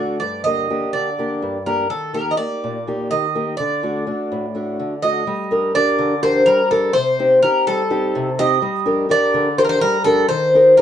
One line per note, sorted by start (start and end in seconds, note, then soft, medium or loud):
0.00 0.20 D3 medium
0.00 0.17 A3 soft
0.00 0.17 D4 soft
0.00 0.17 F#4 soft
0.00 0.17 D5 medium
0.20 0.68 G2 medium
0.20 0.43 D5 medium
0.44 0.84 D3 soft
0.44 0.69 A#3 soft
0.44 0.70 G4 soft
0.44 0.93 D#5 medium
0.70 1.09 A#3 soft
0.70 1.08 D4 soft
0.70 1.09 G4 soft
0.93 1.41 D3 medium
0.93 1.62 D5 medium
1.19 1.57 A#3 soft
1.19 1.57 D4 soft
1.19 1.57 G4 soft
1.42 1.89 G2 medium
1.66 1.85 A#3 soft
1.66 1.85 D4 soft
1.66 1.86 G4 soft
1.66 1.89 A#4 medium
1.90 2.37 D#3 medium
1.90 2.14 A4 medium
2.13 2.37 A#3 soft
2.13 2.38 D#4 soft
2.13 2.38 G4 soft
2.13 2.32 A#4 medium
2.31 2.37 D#5 medium
2.37 2.77 A#3 soft
2.37 2.77 D#4 soft
2.37 2.77 G4 soft
2.37 3.06 D5 medium
2.64 3.10 A#2 medium
2.87 3.25 A#3 soft
2.87 3.26 D#4 soft
2.87 3.26 G4 soft
3.11 3.58 D#3 medium
3.11 3.57 D#5 medium
3.35 3.54 A#3 soft
3.35 3.54 D#4 soft
3.35 3.54 G4 medium
3.57 4.06 D3 medium
3.57 4.98 D5 medium
3.83 4.06 A3 soft
3.83 4.06 D4 soft
3.83 4.06 F#4 soft
4.07 4.45 A3 soft
4.07 4.45 D4 soft
4.07 4.45 F#4 soft
4.32 4.78 A2 medium
4.55 4.93 A3 soft
4.55 4.93 D4 soft
4.55 4.94 F#4 soft
4.80 5.25 D3 medium
5.02 5.22 A3 soft
5.02 5.22 D4 soft
5.02 5.22 F#4 soft
5.02 5.70 D#5 medium
5.27 5.73 G3 medium
5.51 5.74 D4 soft
5.51 5.75 G4 soft
5.51 5.75 A#4 medium
5.75 6.13 D4 soft
5.75 6.13 G4 soft
5.75 6.14 A#4 medium
5.75 6.22 D5 medium
5.99 6.45 D3 medium
6.23 6.61 D4 soft
6.23 6.61 G4 soft
6.23 6.61 A#4 medium
6.23 6.47 C5 medium
6.46 6.93 G3 medium
6.46 6.68 A#4 medium
6.71 6.90 D4 soft
6.71 6.90 G4 soft
6.71 6.95 A4 medium
6.71 6.90 A#4 medium
6.93 7.41 C3 medium
6.93 7.38 C5 medium
7.19 7.42 C4 soft
7.19 7.42 D#4 soft
7.19 7.43 G4 soft
7.42 7.81 C4 soft
7.42 7.81 D#4 soft
7.42 7.82 G4 medium
7.42 7.64 A#4 medium
7.67 8.13 G3 medium
7.67 8.40 A4 medium
7.90 8.28 C4 soft
7.90 8.28 D#4 soft
7.90 8.29 G4 medium
8.15 8.61 C3 medium
8.39 8.57 C4 medium
8.39 8.58 D#4 soft
8.39 8.58 G4 medium
8.39 9.06 D#5 medium
8.62 9.08 G3 medium
8.86 9.08 D4 soft
8.86 9.08 G4 soft
8.86 9.09 A#4 medium
9.09 9.48 D4 soft
9.09 9.48 G4 soft
9.09 9.48 A#4 medium
9.09 9.55 D5 medium
9.34 9.80 D3 medium
9.58 9.96 D4 soft
9.58 9.97 G4 soft
9.58 9.97 A#4 medium
9.58 9.63 C5 medium
9.64 9.69 A#4 medium
9.69 9.80 C5 medium
9.81 10.28 G3 medium
9.81 10.03 A#4 loud
10.04 10.25 D4 medium
10.04 10.25 G4 soft
10.04 10.27 A4 medium
10.04 10.25 A#4 medium
10.29 10.76 D#3 medium
10.29 10.77 C5 medium
10.55 10.77 D#4 soft
10.55 10.77 G4 soft
10.55 10.78 A#4 medium
10.77 10.82 D#4 soft
10.77 10.82 G4 soft
10.77 10.81 A#4 medium